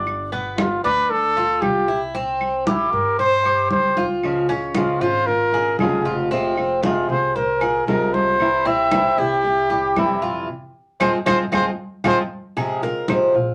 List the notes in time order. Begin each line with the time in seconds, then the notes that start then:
Already playing: G1 D4
0.06 high conga, claves
0.32 B3, high conga
0.58 F4, high conga, claves
0.84 D2 D4 B4, high conga
1.10 A4, high conga
1.37 F4, high conga
1.62 C2 G4, high conga, claves
1.88 E4, high conga
2.15 C4, high conga
2.41 high conga, claves
2.67 E4 G4, high conga
2.92 G2 A#4, high conga
3.19 C5, high conga
3.45 G4, high conga, claves
3.70 C#2 C5, high conga
3.97 F4, high conga
4.23 C#3 F3 G#3 C#4 F4, high conga, claves
4.49 G#3 C#4 F4, high conga
4.75 C#3 F3 G#3 C#4 F4, high conga, claves
5.00 G#1 G#3 C#4 F4 C5, high conga
5.27 A#4, muted nylon-string guitar stroke, high conga
5.53 G#3 C#4 F4 G#4, high conga
5.79 F1 C#3 F3 G#3 C#4 F4 G#4, high conga, claves
6.05 F4, high conga
6.31 C3 F3 G#3 C4 F4, high conga
6.57 G#3 C4 F4, high conga, claves
6.83 C3 F3 G#3 C4 F4 G#4, high conga
7.09 C2 G#3 C4 F4 C5, high conga
7.36 A#4 C5, muted nylon-string guitar stroke, high conga
7.61 G#3 C4 F4 G#4, high conga, claves
7.87 C2 C3 F3 G#3 C4 F4 A#4, high conga
8.14 C5, high conga
8.39 C3 E3 G3 C4 E4, high conga, claves
8.65 G3 C4 E4 E5, high conga
8.91 C3 E3 G3 C4 E4, high conga, claves
9.18 C2 G3 C4 E4 G4, high conga
9.44 muted nylon-string guitar stroke, high conga
9.70 G3 C4 E4 G4, high conga
9.96 F2 C3 E3 G3 C4 E4, high conga, claves
10.22 F4, high conga
11.00 F2 F3 G#3 C4 F4 G#4 C5, high conga, claves
11.26 F2 F3 G#3 C4 F4 G#4 C5, high conga, claves
11.52 F3 G#3 C4 F4 G#4 C5, high conga, claves
12.04 F2 F3 G#3 C4 F4 G#4 C5, high conga, claves
12.56 C3 F3 G#3 C4 F4 G#4, high conga, claves
12.82 G#3 C4 F4 A#4, high conga
13.08 C3 F3 G#3 C4 F4 C5, high conga, claves
13.34 A#1 G#3 C4 F4